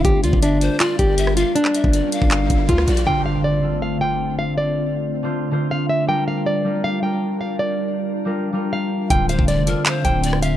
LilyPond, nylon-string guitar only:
\new Staff \with { instrumentName = "Nylon-string guitar" } { \time 4/4 \key d \minor \tempo 4 = 159 g'8 f'8 d'4 f'8 g'4 f'8 | d'2. f'4 | g''8 f''8 d''4 f''8 g''4 f''8 | d''2. f''8 e''8 |
g''8 f''8 d''4 f''8 g''4 f''8 | d''2. f''4 | g''8 f''8 d''4 f''8 g''4 f''8 | }